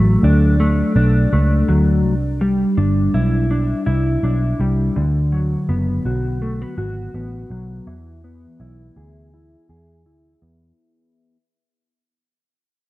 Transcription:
0.00 0.16 A1 medium
0.00 1.67 F#3 medium
0.00 0.59 A3 medium
0.23 0.81 D2 medium
0.23 0.96 D4 medium
0.60 1.32 A3 medium
0.96 1.25 B1 medium
0.96 2.77 D4 medium
1.33 1.62 C#2 medium
1.33 2.13 A3 medium
1.68 2.05 D2 medium
1.68 2.13 F#3 medium
2.05 2.63 C2 loud
2.41 4.59 G3 medium
2.77 3.07 G1 medium
2.77 3.50 D4 medium
3.14 3.72 B1 medium
3.14 3.85 E4 medium
3.51 4.23 D4 medium
3.86 4.16 C2 medium
3.86 5.04 E4 medium
4.23 4.52 B1 medium
4.23 5.68 D4 medium
4.59 4.89 C2 medium
4.59 5.04 G3 medium
4.96 5.54 D2 medium
4.96 7.87 D3 medium
5.32 7.50 F#3 medium
5.69 5.98 F#1 medium
5.69 6.41 B3 medium
6.05 6.63 B1 medium
6.05 6.77 F#4 soft
6.42 6.62 A3 medium
6.62 7.13 B3 soft
6.78 7.07 G#1 medium
6.78 7.95 F#4 medium
7.14 7.43 A1 medium
7.14 8.24 B3 soft
7.50 7.79 B1 medium
7.50 7.95 F#3 medium
7.87 8.45 E2 medium
7.87 11.36 E3 medium
8.24 10.42 B3 medium
8.60 8.89 B1 medium
8.60 9.33 E4 medium
8.96 9.54 D2 medium
8.96 9.69 G#4 soft
9.34 10.06 E4 medium
9.69 10.05 E2 medium
9.69 11.36 G#4 medium
10.05 10.34 D2 medium
10.05 11.36 E4 medium
10.42 10.71 E2 medium
10.42 11.36 B3 soft

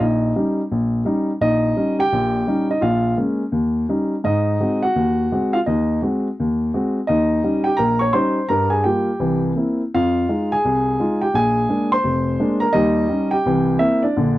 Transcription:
0.00 0.31 A#1 medium
0.00 0.34 D#4 medium
0.00 0.33 D#5 medium
0.36 0.60 G3 soft
0.36 0.60 C#4 soft
0.36 0.60 D#4 medium
0.72 1.02 A#1 medium
1.05 1.29 G3 medium
1.05 1.30 C#4 soft
1.05 1.30 D#4 medium
1.41 1.72 A#1 medium
1.41 1.76 D#4 medium
1.41 1.95 D#5 medium
1.77 2.00 G3 soft
1.77 2.00 C#4 soft
1.77 2.01 D#4 soft
1.99 2.65 G4 medium
1.99 2.65 G5 loud
2.13 2.42 A#1 medium
2.13 2.42 A#2 medium
2.47 2.71 G3 soft
2.47 2.70 C#4 soft
2.47 2.69 D#4 soft
2.71 2.82 D#4 medium
2.71 2.82 D#5 medium
2.81 3.13 A#1 medium
2.81 3.15 F4 medium
2.81 3.15 F5 medium
3.17 3.42 G#3 soft
3.17 3.41 A#3 soft
3.17 3.42 C#4 soft
3.52 3.84 D#2 medium
3.89 4.14 G3 soft
3.89 4.13 C#4 soft
3.89 4.14 D#4 soft
4.24 4.56 G#2 medium
4.24 4.81 D#4 medium
4.24 4.80 D#5 medium
4.60 4.85 G#3 soft
4.60 4.85 C4 soft
4.60 4.83 F#4 soft
4.82 5.32 F#4 medium
4.82 5.56 F#5 medium
4.96 5.27 D#2 medium
5.32 5.56 G#3 medium
5.32 5.56 C4 soft
5.32 5.57 F#4 medium
5.53 5.60 F4 medium
5.53 5.58 F5 medium
5.66 5.98 D#2 medium
5.66 6.01 D#4 medium
5.66 6.00 D#5 medium
6.02 6.26 G#3 soft
6.02 6.26 C4 soft
6.02 6.27 F#4 soft
6.40 6.70 D#2 medium
6.74 6.98 G#3 soft
6.74 6.98 C4 soft
6.74 6.98 F#4 medium
7.07 7.39 D#2 medium
7.07 7.43 D#4 medium
7.07 7.67 D#5 medium
7.44 7.67 G3 soft
7.44 7.67 C#4 soft
7.44 7.68 D#4 soft
7.64 7.78 G4 medium
7.64 7.78 G5 medium
7.77 8.09 A#1 medium
7.77 8.00 A#4 medium
7.77 8.01 A#5 medium
7.99 8.13 C#5 medium
7.99 8.13 C#6 medium
8.13 8.37 G3 soft
8.13 8.37 C#4 soft
8.13 8.37 D#4 medium
8.13 8.46 C5 medium
8.13 8.46 C6 medium
8.49 8.80 G2 medium
8.49 8.71 A#4 medium
8.49 8.72 A#5 medium
8.70 8.83 G#4 medium
8.70 8.83 G#5 medium
8.84 9.08 G3 soft
8.84 9.08 A#3 soft
8.84 9.09 F4 soft
8.84 9.39 G4 medium
8.84 9.39 G5 medium
9.20 9.51 C2 medium
9.20 9.51 E3 medium
9.55 9.80 A#3 soft
9.55 9.81 C4 soft
9.55 9.81 E4 soft
9.94 10.24 F2 medium
9.94 10.29 F4 medium
9.94 10.54 F5 medium
10.29 10.53 G#3 soft
10.29 10.53 D#4 soft
10.29 10.53 F4 soft
10.52 11.19 G#4 medium
10.52 11.24 G#5 medium
10.65 10.95 C2 medium
11.00 11.23 G#3 soft
11.00 11.23 D#4 soft
11.00 11.24 F4 medium
11.21 11.34 G4 medium
11.21 11.33 G5 medium
11.34 11.65 A#1 medium
11.34 11.89 G#4 medium
11.34 11.89 G#5 loud
11.69 11.93 G#3 soft
11.69 11.93 A#3 soft
11.69 11.94 D4 soft
11.92 12.59 C5 medium
11.92 12.59 C6 medium
12.04 12.35 F1 medium
12.40 12.64 G#3 medium
12.40 12.64 A#3 soft
12.40 12.64 D4 medium
12.60 12.74 A#4 medium
12.60 12.73 A#5 medium
12.73 13.05 D#2 medium
12.73 13.05 G3 medium
12.73 13.08 D#4 medium
12.73 13.33 D#5 medium
13.08 13.33 G3 soft
13.08 13.34 C#4 soft
13.08 13.34 D#4 medium
13.31 13.78 G4 medium
13.31 13.81 G5 medium
13.46 13.76 C2 medium
13.46 13.77 E3 medium
13.79 14.04 A#3 medium
13.79 14.04 C4 soft
13.79 14.04 E4 medium
13.79 14.03 E5 medium
14.03 14.38 D4 medium
14.03 14.38 D5 medium
14.17 14.38 A#1 medium
14.17 14.38 D3 medium

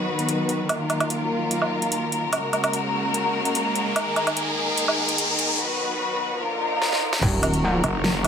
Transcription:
0.00 2.29 D#3 medium
0.00 0.68 F#3 medium
0.00 0.68 B3 medium
0.00 0.68 F#4 medium
0.00 0.68 B4 medium
0.19 closed hi-hat medium
0.29 closed hi-hat medium
0.49 closed hi-hat soft
0.69 2.31 F#3 medium
0.69 2.31 A#3 medium
0.69 2.31 F4 medium
0.69 5.55 A#4 medium
0.69 closed hi-hat medium
0.69 riser medium
0.69 low woodblock medium
0.90 closed hi-hat soft
0.90 low woodblock soft
1.00 closed hi-hat soft
1.00 low woodblock medium
1.10 closed hi-hat medium
1.51 closed hi-hat medium
1.62 low woodblock soft
1.82 closed hi-hat soft
1.92 closed hi-hat medium
2.12 closed hi-hat soft
2.33 3.94 C#3 medium
2.33 5.56 G#3 medium
2.33 5.56 A#3 medium
2.33 3.94 F#4 medium
2.33 closed hi-hat medium
2.33 low woodblock medium
2.53 closed hi-hat soft
2.53 low woodblock soft
2.64 closed hi-hat soft
2.64 low woodblock medium
2.73 closed hi-hat medium
3.14 closed hi-hat medium
3.45 closed hi-hat soft
3.55 closed hi-hat medium
3.75 closed hi-hat soft
3.96 6.38 D#3 medium
3.96 5.58 G#4 medium
3.96 closed hi-hat medium
3.96 low woodblock medium
4.16 closed hi-hat soft
4.16 low woodblock medium
4.27 closed hi-hat medium
4.27 low woodblock medium
4.37 closed hi-hat medium
4.78 closed hi-hat medium
4.88 low woodblock medium
5.09 closed hi-hat medium
5.18 closed hi-hat medium
5.39 closed hi-hat soft
5.59 6.40 F#3 medium
5.59 6.40 B3 medium
5.59 6.40 F#4 medium
5.59 6.40 B4 medium
6.41 7.22 D3 medium
6.41 7.22 F3 medium
6.41 7.21 A#3 medium
6.41 7.22 F4 medium
6.41 7.21 A#4 medium
6.41 swell medium
6.82 snare medium
6.92 snare medium
7.13 snare medium
7.22 7.64 D#1 loud
7.22 8.28 D#3 medium
7.22 8.28 F#3 medium
7.22 8.28 A#3 medium
7.22 8.28 F#4 medium
7.22 8.28 A#4 medium
7.22 kick loud
7.22 crash loud
7.22 sub drop medium
7.43 closed hi-hat medium
7.43 low woodblock medium
7.54 closed hi-hat soft
7.64 7.82 D1 loud
7.84 8.28 F#1 medium
7.84 closed hi-hat medium
7.84 low woodblock medium
8.04 snare loud
8.24 closed hi-hat medium
8.24 low woodblock medium

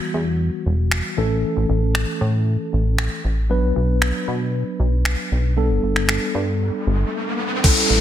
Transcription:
0.00 1.14 E3 medium
0.00 1.14 G3 medium
0.00 1.14 B3 medium
0.00 1.14 F#4 medium
0.14 0.50 E2 medium
0.66 1.02 E1 medium
0.91 finger snap loud
1.17 1.44 A1 medium
1.17 3.20 E3 medium
1.17 3.20 A3 medium
1.17 3.21 C#4 medium
1.17 3.21 A4 medium
1.56 1.65 A1 medium
1.69 2.05 A1 medium
1.95 finger snap loud
2.21 2.57 A2 loud
2.73 3.08 A1 medium
2.98 finger snap loud
3.24 3.65 A1 medium
3.50 5.53 F#3 medium
3.50 5.53 B3 medium
3.50 5.53 D4 medium
3.50 5.53 B4 medium
3.63 3.72 B1 loud
3.76 4.12 B1 medium
4.02 finger snap loud
4.28 4.64 B2 loud
4.80 5.15 B1 medium
5.05 finger snap loud
5.31 5.72 B1 medium
5.57 7.60 G3 medium
5.57 7.60 B3 medium
5.57 7.60 D4 medium
5.57 7.60 A4 medium
5.57 riser medium
5.70 5.79 G1 loud
5.83 6.19 G1 medium
5.96 finger snap medium
6.09 finger snap loud
6.35 6.70 G2 medium
6.86 7.04 G1 medium
7.64 8.01 G3 medium
7.64 8.01 C#4 medium
7.64 8.01 E4 medium
7.64 8.01 A4 medium
7.64 kick loud
7.64 closed hi-hat medium
7.64 crash medium
7.64 downlifter medium
7.77 closed hi-hat medium
7.90 8.01 A1 loud

